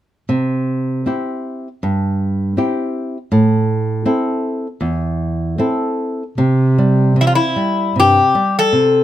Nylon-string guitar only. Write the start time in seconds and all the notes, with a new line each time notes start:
0.29 C3
1.06 C4 E4 G4
1.83 G2
2.57 C4 E4 G4
3.32 A2
4.06 C4 E4 A4
4.81 E2
5.58 C4 E4 A4
6.38 C3
6.78 G3
7.16 C3
7.56 G3
7.96 C3
8.35 G3
8.73 C3